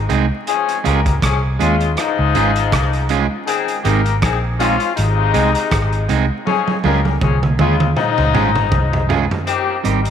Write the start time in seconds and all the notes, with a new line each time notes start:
0.09 C2 G#3 C4 D#4 G#4, closed hi-hat
0.47 F3 C#4 G#4, closed hi-hat
0.69 closed hi-hat
0.84 C#2 G#3 A#3 C#4 F4 G4 G#4 A#4, closed hi-hat
1.06 kick, closed hi-hat
1.22 C2 F3 C#4 G#4, kick, cross-stick, closed hi-hat
1.59 D#2 C#3 G#3 C#4 F4 G#4, closed hi-hat
1.81 closed hi-hat
1.97 G#2 F3 D#4, cross-stick, closed hi-hat
2.19 C#2
2.35 G#1 G#3 C#4 F4 G#4, closed hi-hat
2.56 closed hi-hat
2.72 C2, kick, cross-stick, closed hi-hat
2.93 closed hi-hat
3.09 G#3 C#4 F4 G#4, closed hi-hat
3.46 D#3 C4 G#4, closed hi-hat
3.68 closed hi-hat
3.84 G#1 G#3 A#3 C4 D#4 G4 G#4 A#4, closed hi-hat
4.06 closed hi-hat
4.21 A#1 D#3 C4 G#4, kick, cross-stick, closed hi-hat
4.58 F3 G#3 C4 C#4 D#4 F4 G#4, closed hi-hat
4.80 closed hi-hat
4.95 G#1 C3 G#3 D#4, closed hi-hat
5.34 C2 G#3 C4 D#4 G#4, closed hi-hat
5.55 closed hi-hat
5.71 G#1, kick, cross-stick, closed hi-hat
5.93 closed hi-hat
6.09 C2 G#3 C4 D#4 G#4, closed hi-hat
6.45 F3 C#4 G#4, high tom
6.67 high tom
6.84 C#2 G#3 A#3 C#4 F4 G4 G#4 A#4, high tom
7.05 high tom
7.21 C2 F3 C#4 G#4, kick, mid tom
7.43 mid tom
7.59 D#2 C#3 G#3 C#4 F4 G#4, mid tom
7.80 mid tom
7.96 G#2 F3 D#4, mid tom
8.18 C#2, mid tom
8.33 G#1 G#3 C#4 F4 G#4, mid tom
8.55 muted clean electric guitar stroke, mid tom
8.72 C2, kick, floor tom
8.93 floor tom
9.09 G#3 C#4 F4 G#4, floor tom
9.31 floor tom
9.46 D#3 C4 G4, closed hi-hat
9.83 G#1 G3 C4 D#4 G4 A#4, closed hi-hat
10.05 closed hi-hat